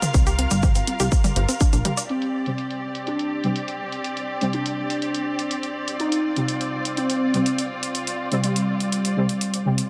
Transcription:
Already playing: string section F4 A#4 F5
0.02 synth arpeggio sound C4, closed hi-hat, mid tom, shaker
0.14 analog synth bass C2, synth arpeggio sound C4, kick, closed hi-hat, shaker
0.27 synth arpeggio sound G4, closed hi-hat, shaker
0.39 synth arpeggio sound C4, closed hi-hat
0.51 analog synth bass G1, synth arpeggio sound G3, closed hi-hat, shaker
0.63 synth arpeggio sound C4, kick, closed hi-hat, mid tom, shaker
0.75 synth arpeggio sound C4, closed hi-hat, shaker
0.87 synth arpeggio sound C4, closed hi-hat
1.00 analog synth bass C2, synth arpeggio sound G4, closed hi-hat, shaker
1.12 synth arpeggio sound C4, kick, closed hi-hat, shaker
1.24 synth arpeggio sound G3, closed hi-hat, mid tom, shaker
1.36 analog synth bass G1, synth arpeggio sound C5, closed hi-hat
1.49 synth arpeggio sound C4, closed hi-hat, shaker
1.60 synth arpeggio sound D4, kick, closed hi-hat, shaker
1.73 analog synth bass A#1, synth arpeggio sound D4, closed hi-hat, shaker
1.85 synth arpeggio sound G3, closed hi-hat, mid tom
1.97 synth arpeggio sound D5, closed hi-hat, shaker
2.09 analog polysynth C4, string section C4 G4 D5, closed hi-hat
2.22 closed hi-hat
2.46 synth stab C3 G3 C4, closed hi-hat
2.58 closed hi-hat
2.71 closed hi-hat
2.95 closed hi-hat
3.07 analog polysynth D4, closed hi-hat
3.19 closed hi-hat
3.44 synth stab C3 G3 C4, closed hi-hat
3.56 closed hi-hat
3.68 closed hi-hat
3.92 closed hi-hat
4.04 closed hi-hat
4.17 closed hi-hat
4.41 synth stab C3 G3 C4, closed hi-hat
4.53 analog polysynth D4, closed hi-hat
4.66 closed hi-hat
4.90 closed hi-hat
5.02 closed hi-hat
5.14 closed hi-hat
5.39 closed hi-hat
5.51 closed hi-hat
5.63 closed hi-hat
5.88 closed hi-hat
6.00 analog polysynth D#4, string section F4, closed hi-hat
6.12 closed hi-hat
6.36 synth stab C3 G3 C4, closed hi-hat
6.48 closed hi-hat
6.61 closed hi-hat
6.85 closed hi-hat
6.97 analog polysynth C4, closed hi-hat
7.10 closed hi-hat
7.34 synth stab C3 G3 C4, closed hi-hat
7.46 closed hi-hat
7.58 closed hi-hat
7.83 closed hi-hat
7.95 closed hi-hat
8.07 closed hi-hat
8.32 synth stab C3 G3 C4, closed hi-hat
8.43 analog polysynth G3, closed hi-hat
8.56 closed hi-hat
8.80 closed hi-hat
8.92 closed hi-hat
9.05 closed hi-hat
9.17 synth stab C3 G3 C4
9.29 closed hi-hat
9.41 closed hi-hat
9.54 closed hi-hat
9.66 synth stab C3 G3 C4
9.78 closed hi-hat

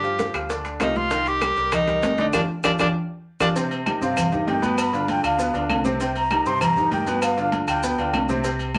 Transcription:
Already playing: fingered electric bass G2, tenor saxophone G4
0.03 grand piano F3 F4 G4, high bongo, high conga, maracas
0.19 high bongo, high conga, high timbale, low timbale, maracas
0.34 fingered electric bass D2, grand piano F3 F4 G4, high bongo, high conga, high timbale, claves, maracas
0.49 grand piano D3 D4 D5, high bongo, high conga, maracas
0.65 high conga, high timbale, maracas
0.80 fingered electric bass C2, grand piano F3 F4 G4, tenor saxophone D#4, high bongo, low bongo, high conga, high timbale, low timbale, claves, maracas
0.95 tenor saxophone F4, high bongo, high conga, maracas
1.11 grand piano D#3 D#4 D#5, high bongo, maracas
1.26 tenor saxophone G4, high conga, high timbale, maracas
1.41 grand piano G3 G4 A#4, high bongo, high conga, high timbale, low timbale, claves, maracas
1.56 fingered electric bass C2, grand piano G3 G4 A#4, high conga, maracas
1.72 tenor saxophone D#4, high bongo, high conga, low conga, high timbale, claves, maracas
1.87 grand piano G3 G4 A#4, high conga, low conga, high timbale, maracas
2.02 fingered electric bass G1, high bongo, low bongo, high conga, low timbale, maracas
2.18 grand piano D3 D4 D5, tenor saxophone D#4, high conga, high timbale, maracas
2.32 fingered electric bass G1, grand piano D4 F4 G4, tenor saxophone D4, high bongo, low conga, high timbale, claves, maracas
2.63 fingered electric bass G1, grand piano D4 F4 G4, tenor saxophone D4, high bongo, low conga, high timbale, claves, maracas
2.78 fingered electric bass G1, grand piano D4 F4 G4, tenor saxophone D4, high bongo, low conga, high timbale, claves, maracas
3.40 fingered electric bass G1, grand piano D4 F4 G4, tenor saxophone D4, high bongo, low conga, high timbale, claves, maracas
3.56 grand piano C3 C4 C5, cowbell, high conga, low agogo, maracas
3.71 high conga, low agogo, maracas
3.86 grand piano D#3 D#4 G4, cowbell, high conga, low agogo, claves, maracas
4.01 fingered electric bass G2, grand piano C3 C4 C5, ocarina F5, high conga, maracas
4.17 cowbell, high conga, low conga, low agogo, claves, maracas
4.32 grand piano D#3 D#4 G4, high conga, low conga, maracas
4.47 fingered electric bass G2, grand piano D#3 D#4 G4, ocarina G5, cowbell, high conga, low timbale, low agogo, maracas
4.62 grand piano B2 B3 B4, high conga, low agogo, maracas
4.78 ocarina B5, cowbell, high conga, low agogo, claves, maracas
4.93 grand piano D3 D4 F4, cowbell, high conga, maracas
5.08 ocarina G5, cowbell, high conga, low agogo, maracas
5.23 fingered electric bass D2, grand piano D3 D4 F4, ocarina F5, high conga, low agogo, claves, maracas
5.38 grand piano B2 B3 B4, cowbell, high conga, maracas
5.53 fingered electric bass D2, grand piano D3 D4 F4, high conga, low agogo, maracas
5.69 fingered electric bass C2, cowbell, high conga, low timbale, low agogo, claves, maracas
5.85 grand piano C3 C4 C5, high conga, maracas
6.00 grand piano C3 C4 C5, ocarina G5, cowbell, high conga, low agogo, maracas
6.15 ocarina A#5, high conga, low agogo, maracas
6.31 grand piano D#3 D#4 G4, cowbell, high conga, low agogo, claves, maracas
6.45 fingered electric bass G2, grand piano C3 C4 C5, ocarina C6, high conga, maracas
6.61 ocarina A#5, cowbell, high conga, low conga, low agogo, claves, maracas
6.76 grand piano D#3 D#4 G4, high conga, low conga, maracas
6.91 fingered electric bass G2, grand piano D#3 D#4 G4, ocarina G5, cowbell, high conga, low agogo, maracas
7.06 grand piano B2 B3 B4, high conga, low agogo, maracas
7.22 ocarina F5, cowbell, high conga, low agogo, claves, maracas
7.37 grand piano D3 D4 F4, cowbell, high conga, maracas
7.52 cowbell, high conga, low agogo, maracas
7.67 fingered electric bass D2, grand piano D3 D4 F4, ocarina G5, high conga, low agogo, claves, maracas
7.83 grand piano B2 B3 B4, cowbell, high conga, maracas
7.98 fingered electric bass D2, grand piano D3 D4 F4, high conga, low agogo, maracas
8.13 fingered electric bass C2, cowbell, high conga, low timbale, low agogo, claves, maracas
8.29 grand piano C3 C4 C5, high conga, maracas
8.44 grand piano C3 C4 C5, cowbell, low agogo, maracas
8.59 high conga, low agogo, maracas
8.74 grand piano D#3, cowbell, high conga, low agogo, claves, maracas

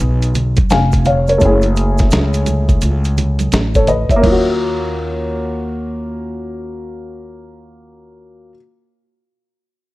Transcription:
Already playing: upright piano B3 D#4 F4 G#4
0.00 upright bass B1
0.22 closed hi-hat, maracas
0.35 closed hi-hat, low conga, maracas
0.56 muted upright bass stroke, kick, closed hi-hat, high conga, maracas
0.70 upright bass F1, upright piano F5 G#5, snare, closed hi-hat, maracas
0.92 kick, closed hi-hat, maracas
1.05 upright piano C#5 F5, closed hi-hat, low conga, maracas
1.27 upright piano A#4 C#5, closed hi-hat, high conga, maracas
1.38 upright bass F#1, upright piano A3 C#4, kick, closed hi-hat, maracas
1.43 upright piano E4 G#4
1.62 closed hi-hat, maracas
1.76 closed hi-hat, maracas
1.98 kick, snare, closed hi-hat, maracas
2.11 upright bass C#2, snare, closed hi-hat, maracas
2.34 closed hi-hat, maracas
2.46 closed hi-hat, high conga, low conga, maracas
2.69 kick, closed hi-hat, maracas
2.81 upright bass C#2, closed hi-hat, maracas
3.04 closed hi-hat, maracas
3.18 closed hi-hat, low conga, maracas
3.39 closed hi-hat, high conga, maracas
3.52 upright bass A1, snare, closed hi-hat, maracas
3.75 upright piano A4 C#5, kick, closed hi-hat, maracas
3.87 upright piano B4 D#5, closed hi-hat, low conga, maracas
4.09 upright piano C#5 E5, muted upright bass stroke, kick, closed hi-hat, high conga, maracas
4.16 upright piano A#3
4.21 upright bass D#2, upright piano C#4, kick, crash, high conga
4.26 upright piano F4
4.31 upright piano F#4

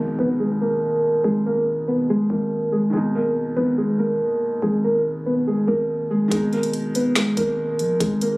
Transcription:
Already playing: 808-style bass G#1, felt piano B2 D#3 G#3 D#4, impact
0.19 808-style bass G#1, synth keys B3 B4
0.40 synth keys G#3 G#4
0.61 synth keys A#3 A#4
1.24 808-style bass G#1, synth keys G#3 G#4
1.46 synth keys A#3 A#4
1.88 synth keys B3 B4
2.10 synth keys G#3 G#4
2.30 808-style bass G#1, synth keys A#3 A#4
2.72 synth keys G#3 G#4
2.90 808-style bass G#1, felt piano D#3 G#3, synth keys G#4
2.94 felt piano B2 D#4, synth keys G#3
3.15 synth keys A#3 A#4
3.56 808-style bass G#1, synth keys B3 B4
3.78 synth keys G#3 G#4
3.99 synth keys A#3 A#4
4.62 808-style bass G#1, synth keys G#3 G#4
4.84 synth keys A#3 A#4
5.26 synth keys B3 B4
5.47 synth keys G#3 G#4
5.67 808-style bass G#1, synth keys A#3 A#4
6.11 synth keys G#3 G#4
6.28 808-style bass G#1, felt piano D#3 G#3, synth keys G#4, kick, closed hi-hat
6.33 felt piano B2 D#4, synth keys G#3
6.53 synth keys A#3 A#4, closed hi-hat
6.63 closed hi-hat
6.73 closed hi-hat
6.95 synth keys B3 B4, closed hi-hat
7.15 synth keys G#3 G#4, finger snap, snare, closed hi-hat
7.37 808-style bass G#1, synth keys A#3 A#4, kick, closed hi-hat
7.79 808-style bass A#1, closed hi-hat
8.00 808-style bass G#1, synth keys G#3 G#4, kick, closed hi-hat
8.21 synth keys A#3 A#4, closed hi-hat

